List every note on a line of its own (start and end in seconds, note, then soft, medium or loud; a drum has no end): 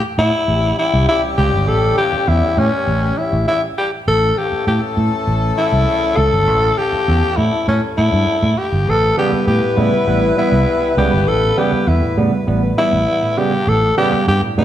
0.18 0.30 A2 loud
0.18 0.74 E4 loud
0.47 0.72 A1 medium
0.47 3.73 E3 medium
0.47 3.73 G3 medium
0.47 3.73 C#4 medium
0.47 3.73 G4 medium
0.79 1.06 E4 loud
0.94 1.05 C2 loud
1.09 1.22 E4 loud
1.37 1.50 C#2 loud
1.37 1.69 G4 loud
1.53 1.68 G1 loud
1.68 1.92 A1 loud
1.68 1.97 A4 loud
1.98 2.30 G4 loud
2.13 muted fingered electric bass stroke soft
2.28 2.40 E2 loud
2.28 2.60 E4 loud
2.58 2.69 A2 loud
2.58 3.19 C#4 loud
2.87 3.11 A1 loud
3.18 3.47 E4 medium
3.33 3.44 A1 loud
3.48 3.61 E4 loud
3.78 3.91 G4 medium
4.07 4.31 A1 loud
4.07 8.54 E3 medium
4.07 8.53 A3 medium
4.07 8.53 C#4 medium
4.07 8.53 A4 medium
4.07 4.39 A4 loud
4.38 4.67 G4 loud
4.52 muted fingered electric bass stroke soft
4.67 4.79 A2 medium
4.67 4.81 G4 medium
4.97 5.09 A2 loud
5.27 5.51 A1 medium
5.58 6.18 E4 loud
5.72 5.84 C2 medium
6.17 6.29 C#2 loud
6.17 6.79 A4 loud
6.32 6.47 G1 medium
6.47 6.71 A1 loud
6.78 7.38 G4 loud
6.93 muted fingered electric bass stroke soft
7.08 7.20 E2 medium
7.37 7.49 A2 medium
7.37 7.67 E4 loud
7.68 7.79 A2 loud
7.68 7.82 C#4 medium
7.98 8.10 A2 loud
7.98 8.60 E4 loud
8.13 8.24 G2 loud
8.43 8.54 A2 loud
8.58 8.91 G4 medium
8.72 8.84 G1 medium
8.87 9.11 A1 loud
8.87 9.01 A2 medium
8.87 13.34 G3 medium
8.87 13.34 B3 medium
8.87 13.34 E4 medium
8.87 9.18 A4 loud
8.87 13.34 B4 loud
9.17 9.31 C#3 medium
9.17 9.31 G3 medium
9.17 9.31 B3 loud
9.17 9.46 G4 loud
9.32 9.38 G3 soft
9.32 9.38 B3 soft
9.32 muted fingered electric bass stroke soft
9.47 9.59 A2 loud
9.47 9.54 G3 soft
9.47 9.54 B3 soft
9.47 9.79 G4 medium
9.62 9.76 A2 medium
9.77 9.89 A2 loud
9.77 9.91 C#3 medium
9.77 9.91 G3 medium
9.77 9.91 B3 medium
9.77 10.37 E4 loud
10.07 10.31 A1 loud
10.07 10.21 G3 medium
10.07 10.21 B3 medium
10.22 10.36 A2 medium
10.37 10.51 G3 medium
10.37 10.51 B3 medium
10.37 10.94 E4 loud
10.52 10.64 C2 loud
10.97 11.09 C#2 loud
10.97 11.11 C#3 loud
10.97 11.11 G3 medium
10.97 11.11 B3 medium
10.97 11.29 G4 loud
11.12 11.28 G1 medium
11.28 11.51 A1 loud
11.28 11.41 A2 medium
11.28 11.59 A4 loud
11.57 11.71 C#3 medium
11.57 11.71 G3 medium
11.57 11.71 B3 loud
11.57 11.90 G4 loud
11.72 11.79 G3 soft
11.72 11.79 B3 medium
11.72 muted fingered electric bass stroke soft
11.87 11.99 E2 loud
11.87 11.94 G3 soft
11.87 11.94 B3 soft
11.87 12.18 E4 medium
12.03 12.16 A2 medium
12.17 12.29 A2 loud
12.17 12.31 C#3 medium
12.17 12.31 G3 medium
12.17 12.31 B3 medium
12.47 12.71 A1 loud
12.47 12.61 G3 medium
12.47 12.61 B3 medium
12.62 12.76 A2 medium
12.77 12.91 G3 medium
12.77 12.91 B3 medium
12.77 13.40 E4 loud
12.93 13.05 A1 medium
13.07 13.14 G3 soft
13.07 13.14 B3 soft
13.22 13.36 A2 medium
13.37 13.51 C#3 medium
13.37 13.51 G3 medium
13.37 13.51 B3 medium
13.37 13.70 G4 loud
13.67 13.91 A1 loud
13.67 13.81 A2 medium
13.67 13.97 A4 loud
13.97 14.11 C#3 loud
13.97 14.11 G3 medium
13.97 14.11 B3 loud
13.97 14.26 G4 loud
14.13 14.19 G3 soft
14.13 14.19 B3 medium
14.13 muted fingered electric bass stroke soft
14.28 14.39 G2 loud
14.28 14.34 G3 soft
14.28 14.34 B3 soft
14.28 14.42 G4 loud
14.43 14.56 A2 medium
14.57 14.65 A2 loud
14.57 14.65 C#3 medium
14.57 14.65 G3 medium
14.57 14.65 B3 medium
14.57 14.65 E4 loud